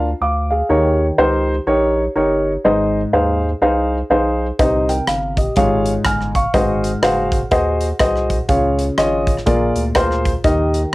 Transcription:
Already playing: analog synth bass D2
0.21 analog synth bass D2, grand piano F5 D6
0.50 grand piano G#4 F5
0.69 analog synth bass D#2, grand piano D#3 D#4 G4 A#4 C#5
1.18 analog synth bass C#2, grand piano D#4 G4 A#4 C5
1.67 analog synth bass A#1, grand piano D#4 G4 A#4 C#5
2.16 analog synth bass G1, grand piano D#4 G4 A#4 C#5
2.65 analog synth bass G#1, grand piano G#2 D#4 G#4 C5 D#5
3.13 analog synth bass D#2, grand piano D#4 G#4 C5 F5
3.62 analog synth bass C2, grand piano D#4 G#4 C5 F5
4.10 analog synth bass B1, grand piano D#4 G#4 C5 F5
4.59 analog synth bass C2, grand piano C3 D#4 G4 C5 D#5, kick, closed hi-hat
4.89 grand piano A#4 G5, closed hi-hat
5.07 analog synth bass G1, grand piano F5, cross-stick, closed hi-hat
5.37 grand piano G4 D#5, kick, closed hi-hat
5.56 analog synth bass G#1, grand piano G#2 F4 G#4 C#5 F5, kick, closed hi-hat
5.86 closed hi-hat
6.05 analog synth bass G1, grand piano G#5 F6, kick, cross-stick, closed hi-hat
6.21 cross-stick
6.35 grand piano F5 C#6, kick, closed hi-hat
6.54 analog synth bass G#1, grand piano G#2 F#4 G#4 C5 D#5, kick, closed hi-hat
6.84 closed hi-hat
7.02 analog synth bass F#1, grand piano F#4 G#4 C5 F5, cross-stick, closed hi-hat
7.32 kick, closed hi-hat
7.51 analog synth bass D#2, grand piano F#4 G#4 C5 D#5, kick, closed hi-hat
7.81 closed hi-hat
7.99 analog synth bass C2, grand piano F#4 G#4 C5 D#5, kick, cross-stick, closed hi-hat
8.16 cross-stick
8.30 kick, closed hi-hat
8.48 analog synth bass C#2, grand piano C#3 F4 G#4 C#5 F5, kick, closed hi-hat
8.79 closed hi-hat
8.97 analog synth bass G#1, grand piano F4 G#4 C#5 D#5, cross-stick, closed hi-hat
9.27 kick, closed hi-hat
9.37 cross-stick
9.46 analog synth bass A#1, grand piano A#2 F4 G#4 A#4 D5, kick, closed hi-hat
9.76 analog synth bass D2, closed hi-hat
9.95 analog synth bass D2, grand piano F4 G#4 A#4 C5, kick, cross-stick, closed hi-hat
10.11 cross-stick
10.25 kick, closed hi-hat
10.44 analog synth bass D#2, grand piano D#3 D#4 G4 A#4 D#5, kick, closed hi-hat
10.74 closed hi-hat

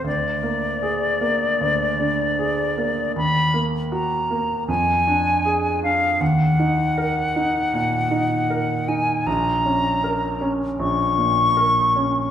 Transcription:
0.04 grand piano D2, flute D5
0.43 grand piano A#3
0.83 grand piano G#4
1.21 grand piano A#3
1.61 grand piano D2
2.00 grand piano D3
2.39 grand piano G#4
2.77 grand piano A#3
3.16 grand piano D#2, flute B5
3.54 grand piano A#3
3.92 grand piano F#4, flute A#5
4.31 grand piano A#3
4.68 grand piano F2, flute G#5
5.07 grand piano D4
5.45 grand piano G#4
5.83 grand piano D4, flute F5
6.20 grand piano D#2, flute F#5
6.60 grand piano D#4
6.98 grand piano A#4
7.36 grand piano D#4
7.74 grand piano A#2
8.11 grand piano D#4
8.50 grand piano A#4
8.88 grand piano D#4, flute G#5
9.27 grand piano A#1, flute A#5
9.65 grand piano C#4
10.04 grand piano A#4
10.41 grand piano C#4
10.79 grand piano A#1, flute C#6
11.18 grand piano A#2
11.57 grand piano A#4
11.96 grand piano C#4

